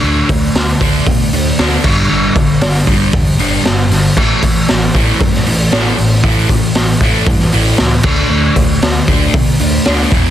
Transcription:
<<
  \new Staff \with { instrumentName = "Distorted electric guitar" } { \clef bass \time 4/4 \key d \major \tempo 4 = 116 <d a d'>8 <d a>8 <d a>8 <d a d'>8 <d a>8 <d a>8 <d a d'>8 <g, d g>8 | <g, d g>8 <g, d>8 <g, d>8 <g, d g>8 <g, d>8 <g, d g>8 <g, d>8 <g, d>8 | <a, e a>8 <a, e>8 <a, e>8 <a, e a>8 <a, e>8 <a, e>8 <a, e a>8 <a, e>8 | <a, e a>8 <a, e>8 <a, e>8 <a, e a>8 <a, e>8 <a, e a>8 <a, e>8 <d a d'>8 |
<d a d'>8 <d a>8 <d a>8 <d a d'>8 <d a>8 <d a>8 <d a d'>8 <e, b, e>8 | }
  \new Staff \with { instrumentName = "Picked electric bass" } { \clef bass \time 4/4 \key d \major d,8 d,8 d,8 d,8 b,8 d,8 d,8 g,,8 | g,,8 g,,8 g,,8 g,,8 e,8 g,,8 g,,8 g,,8 | a,,8 a,,8 a,,8 a,,8 g,8 a,,8 a,,8 a,,8 | a,,8 a,,8 a,,8 a,,8 g,8 a,,8 cis,8 d,8 |
d,8 d,8 d,8 d,8 b,8 d,8 d,8 e,,8 | }
  \new DrumStaff \with { instrumentName = "Drums" } \drummode { \time 4/4 r8 <hho bd>8 <hho sn>8 <hho bd>8 <hho bd>8 hho8 <hho sn>8 <cymc bd>8 | r8 <hho bd>8 <hho sn>8 <hho bd>8 <hho bd>8 hho8 <hho sn>8 <hho sn>8 | <cymc bd>8 <hho bd>8 <hho sn>8 <hho bd>8 <hho bd>16 sn16 hho8 <hho sn>8 hho8 | <hho bd>8 <hho bd>8 <hho sn>8 <hho bd>8 <hho bd>16 sn16 hho8 <hho sn>8 <cymc bd>8 |
r8 <hho bd>8 <hho sn>8 <hho bd>8 <hho bd>8 hho8 <hho sn>8 <hho bd>8 | }
>>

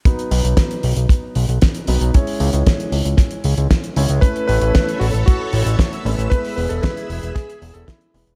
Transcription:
<<
  \new Staff \with { instrumentName = "String machine" } { \time 4/4 \key b \mixolydian \tempo 4 = 115 << { r1 | r1 | e'''1~ | e'''1 | } \\ { r1 | r1 | <a' cis'' b''>1 | <gis' e'' b''>1 | } >> }
  \new Staff \with { instrumentName = "Electric grand piano" } { \time 4/4 \key b \mixolydian r1 | r1 | b'8 b'4 fis'8 fis'4. r8 | b'8 b'16 a'16 b'4 gis'8. a'16 e'8. r16 | }
  \new Staff \with { instrumentName = "Grand piano" } { \time 4/4 \key b \mixolydian <fis b dis' b'>2.~ <fis b dis' b'>8 <fis b dis' b'>8 | <gis cis' e' cis''>2.~ <gis cis' e' cis''>8 <gis cis' e' cis''>8 | <a cis' e' b'>2.~ <a cis' e' b'>8 <a cis' e' b'>8 | <gis b e' b'>2.~ <gis b e' b'>8 <gis b e' b'>8 | }
  \new Staff \with { instrumentName = "Analog synth bass" } { \clef bass \time 4/4 \key b \mixolydian r8 b,,16 b,,16 r8 b,,16 b,,16 r8 b,,16 b,,16 r8 b,,16 b,,16 | r8 cis,16 cis,16 r8 cis,16 cis,16 r8 cis,16 cis,16 r8 cis,16 cis,16 | r8 a,,16 a,,16 r8 a,,16 a,,16 r8 a,,16 a,,16 r8 a,,16 a,,16 | r8 e,,16 e,,16 r8 e,,16 e,,16 r8 e,,16 e,,16 r8 e,,16 e,,16 | }
  \new DrumStaff \with { instrumentName = "Drums" } \drummode { \time 4/4 <hh bd>16 hh16 hho16 hh16 <hh bd sn>16 hh16 hho16 hh16 <hh bd>8 hho16 hh16 <hh bd sn>16 hh16 hho16 hh16 | <hh bd>16 hho16 hho16 hh16 <hh bd sn>16 hh16 hho16 hh16 <hh bd sn>16 hh16 hho16 hh16 <hh bd sn>16 hh16 hho16 hh16 | <hh bd>16 hh16 hho16 hh16 <hh bd sn>16 hh16 hho16 hh16 <hh bd>8 hho16 hh16 <hh bd sn>16 hh16 hho16 hh16 | <hh bd>16 hho16 hho16 hh16 <hh bd sn>16 hh16 hho16 hh16 <hh bd sn>16 hh16 hho16 hh16 <hh bd sn>16 hh16 hho16 hh16 | }
>>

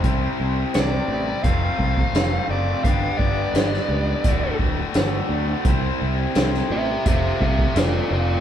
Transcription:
<<
  \new Staff \with { instrumentName = "Lead electric guitar" } { \time 4/4 \key c \lydian \tempo 4 = 85 r4 d''4 f''4. d''8 | f''8 d''2 r4. | r4. <g' e''>8 <g' e''>8 <g' e''>8 <f' d''>8 <f' d''>8 | }
  \new Staff \with { instrumentName = "Distorted electric guitar" } { \time 4/4 \key c \lydian <c g c' e' g' c''>2 <f, c f a c' f'>2 | <g, d g b d' g'>2 <d, a, d a fis'>2 | <c g c' e' g' c''>2 <f, c f a c' f'>2 | }
  \new Staff \with { instrumentName = "Overdriven electric guitar" } { \time 4/4 \key c \lydian <c g c' e' g' c''>4 <c g c' e' g' c''>8 <c' e' g' c''>8 <f, c f a c' f'>16 <f a c' f'>16 <f a c' f'>8 <f, c f a c' f'>8 <f a c' f'>16 <f a c' f'>16 | <g, d g b d' g'>4 <g, d g b d' g'>8 <g b d' g'>8 <d, a, d a fis'>16 <d a fis'>16 <a, d a fis'>8 <d, a, d a fis'>8 <a, d a fis'>16 <d a fis'>16 | <c g c' e' g' c''>4 <c g c' e' g' c''>8 <c' e' g' c''>8 <f, c f a c' f'>16 <f a c' f'>16 <f a c' f'>8 <f, c f a c' f'>8 <f a c' f'>16 <f a c' f'>16 | }
  \new Staff \with { instrumentName = "Fingered electric bass" } { \clef bass \time 4/4 \key c \lydian c,8 c,8 c,8 a,,8 f,,8 c,8 f,,8 fis,,8 | g,,8 g,,8 g,,8 cis,8 d,,8 d,,8 g,,8 d,8 | c,8 c,8 c,8 a,,8 f,,8 c,8 f,,8 f,,8 | }
  \new DrumStaff \with { instrumentName = "Drums" } \drummode { \time 4/4 <hh bd>4 <hh sn>4 <hh bd>8 bd16 bd16 <hh sn>4 | <hh bd>8 bd8 <hh sn>16 sn8. <hh bd>8 bd8 <hh sn>4 | <hh bd>4 <hh sn>16 sn8. <hh bd>8 bd16 bd16 <hh sn>4 | }
>>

